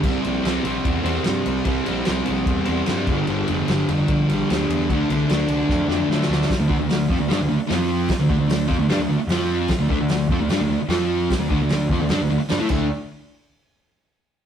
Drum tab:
CC |x---------------|----------------|----------------|----------------|
RD |--x-x-x-x-x-x-x-|x-x-x-x-x-x-x-x-|x-x-x-x-x-x-x-x-|x-x-x-x---------|
HH |----------------|----------------|----------------|----------------|
SD |----o-------o---|----o-------o---|----o-------o---|----o---o-o-oooo|
BD |o-------o-------|o-------o-----o-|--------o-------|o-------o-------|

CC |----------------|----------------|----------------|--------------x-|
RD |----------------|----------------|----------------|----------------|
HH |o---o---o---o---|o---o---o---o---|o---o---o---o---|o---o---o---o---|
SD |o---o---o---o---|o---o---o---o---|o---o---o---o---|o---o---o---o---|
BD |o-o---o---------|o-o---o---------|o-o---o---------|o-o---o-------o-|

CC |----------------|
RD |----------------|
HH |----------------|
SD |----------------|
BD |----------------|